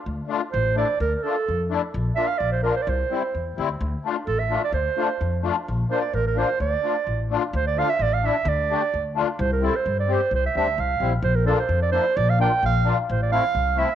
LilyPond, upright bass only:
\new Staff \with { instrumentName = "Upright bass" } { \clef bass \time 2/4 \key d \minor \tempo 4 = 129 d,8 r8 a,,4 | d,8 r8 f,4 | bes,,8 r8 bes,,4 | c,8 r8 e,8 d,8 |
d,8 r8 a,,4 | d,8 r8 f,4 | bes,,8 r8 a,,4 | d,8 r8 a,,4 |
d,4 a,,4 | d,4 d,4 | c,4 g,4 | c,8 d,8 c,8 bes,,8 |
bes,,4 f,4 | bes,,4 bes,,4 | a,,4 c,4 | }